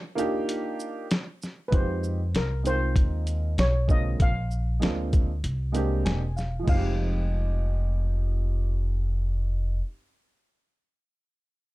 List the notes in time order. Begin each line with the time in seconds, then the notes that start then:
Already playing: A#4
0.15 A#3 D4 D#4 F4 G4, closed hi-hat, shaker
0.49 closed hi-hat
0.80 shaker
1.11 snare, closed hi-hat
1.42 snare, shaker
1.68 G#3 C4 B4
1.72 F2 D#4 F4 G4 C5, kick, closed hi-hat
2.03 shaker
2.34 C2 A#4, snare, closed hi-hat
2.63 G#3 C4 D#4 F4 A#4 C5, closed hi-hat, shaker
2.96 D#2, kick, closed hi-hat
3.27 closed hi-hat, shaker
3.58 B1 C#5, snare, closed hi-hat
3.87 D3 G#3 A#3 C4 F4 D#5, kick, shaker
4.20 A#1 F5, kick, closed hi-hat
4.51 shaker
4.80 D2 G#3 A#3 C4 D4, snare, closed hi-hat
4.84 F4
5.13 kick, closed hi-hat, shaker
5.44 C2, closed hi-hat
5.72 G#3 A#3 C4 D4 G4, closed hi-hat, shaker
6.05 E1 G#5, snare, closed hi-hat
6.36 F5, snare, shaker
6.59 F3
6.63 G#3
6.67 F1 C4 D#4 F5, kick, crash
6.75 G4